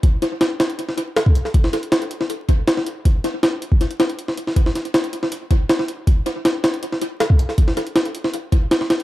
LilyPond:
\new DrumStaff \with { instrumentName = "Drums" } \drummode { \time 4/4 \tempo 4 = 159 <hh bd>8 <hh sn>8 <hh sn>8 <hh sn>16 hh16 hh16 sn16 hh8 <hh sn>16 bd16 hh16 sn16 | <hh bd>16 sn16 <hh sn>16 hh16 <hh sn>16 hh16 hh16 sn16 hh8 <hh bd>8 <hh sn>16 sn16 hh8 | <hh bd>8 <hh sn>8 <hh sn>8 hh16 bd16 <hh sn>16 hh16 <hh sn>16 hh16 hh16 sn16 hh16 sn16 | <hh bd>16 sn16 <hh sn>16 hh16 <hh sn>16 hh16 hh16 sn16 hh8 <hh bd>8 <hh sn>16 sn16 hh8 |
<hh bd>8 <hh sn>8 <hh sn>8 <hh sn>16 hh16 hh16 sn16 hh8 <hh sn>16 bd16 hh16 sn16 | <hh bd>16 sn16 <hh sn>16 hh16 <hh sn>16 hh16 hh16 sn16 hh8 <hh bd>8 <hh sn>16 sn16 <hh sn>16 hh16 | }